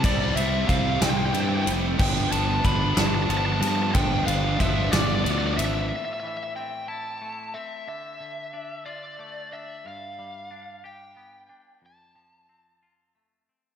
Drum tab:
CC |------|x-----|------|------|
RD |xxxxxx|-xxxxx|xxxxxx|------|
SD |---o--|---o--|---o--|------|
BD |o-o---|o-o---|o-o---|------|

CC |------|------|------|
RD |------|------|------|
SD |------|------|------|
BD |------|------|------|